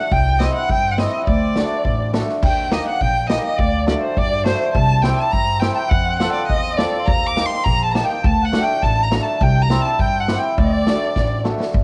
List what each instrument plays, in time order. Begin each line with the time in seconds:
Already playing: violin F#5
0.00 accordion F#5
0.12 upright bass C2, violin G5, accordion G5, kick
0.39 hammered dulcimer C4 E4 G4, violin D#5, snare
0.43 accordion D#5
0.54 violin F#5, accordion F#5
0.69 upright bass G2, violin G5, accordion G5, kick
0.91 violin F#5
0.98 hammered dulcimer C4 E4 G4, violin D#5, accordion D#5, snare
1.23 violin D5, accordion D#5
1.27 upright bass D2, accordion D5, kick
1.56 hammered dulcimer A3 D4 F#4, snare
1.85 upright bass A1, kick
2.13 hammered dulcimer A3 D4 F#4, snare
2.29 snare
2.42 upright bass D#2, violin G5, accordion G5, kick, crash
2.71 hammered dulcimer A#3 D#4 G4, violin D#5, accordion D#5, snare
2.86 accordion F#5, violin F#5
3.01 upright bass A#1, violin G5, accordion G5, kick
3.29 hammered dulcimer A#3 D#4 G4, violin D#5, accordion D#5, snare
3.44 violin D#5, accordion D#5
3.58 upright bass D2, violin D5, accordion D5, kick
3.86 hammered dulcimer A3 D4 F#4, accordion D5, violin D5, snare
4.02 violin C5
4.17 upright bass G2, violin D5, accordion D5, kick
4.44 hammered dulcimer A3 D4 F#4, accordion C5, violin C5, snare
4.73 upright bass C2, violin A5, accordion A5, kick
5.02 hammered dulcimer C4 E4 G4, violin G5, accordion G5, snare
5.16 violin A5, accordion A5
5.31 upright bass G2, violin A#5, accordion A#5, kick
5.60 hammered dulcimer C4 E4 G4, violin G5, accordion G5, snare
5.75 violin G5, accordion G5 A5
5.89 upright bass F2, violin F#5, accordion F#5, kick
6.19 hammered dulcimer C4 F4 A4, violin F#5, accordion F#5, snare
6.32 violin D5
6.47 upright bass E2, violin D#5, accordion D#5, kick
6.76 hammered dulcimer C4 F4 A4, accordion D5, violin D5, snare
6.99 accordion C6
7.06 upright bass D#2, violin A#5, accordion A#5, kick
7.27 violin D6
7.36 hammered dulcimer A#3 D#4 G4, snare
7.46 violin C6, accordion C6
7.64 upright bass A#1, violin A#5, accordion A#5, kick
7.84 violin A5, accordion A5
7.91 hammered dulcimer A#3 D#4, accordion A5, violin A5 A#5
7.95 hammered dulcimer G4, snare
8.04 accordion G5, violin G5
8.23 upright bass D2, accordion A5, violin A5, kick
8.42 accordion F#5, violin F#5
8.52 hammered dulcimer A3 D4 F#4, snare
8.61 accordion G5, violin G5
8.81 upright bass A1, accordion A5, violin A5, kick, snare
9.02 accordion A#5, violin A#5
9.11 hammered dulcimer A3 D4 F#4, snare
9.22 accordion A5, violin A5
9.41 upright bass C2, accordion G5, violin G5, kick
9.61 accordion A#5, violin A#5
9.70 hammered dulcimer C4 E4 G4, snare
9.80 accordion A5, violin A5
9.99 upright bass G2, violin G5, accordion G5, kick
10.20 violin F#5, accordion F#5
10.28 hammered dulcimer C4 E4 G4, snare
10.38 accordion G5, violin G5
10.58 upright bass D2, accordion D5, violin D5, kick
10.64 accordion D#5
10.72 accordion D5
10.87 hammered dulcimer A3 D4 F#4, snare
11.16 upright bass A1, kick, snare
11.44 hammered dulcimer A3 D4 F#4, snare
11.60 snare
11.74 upright bass G1, kick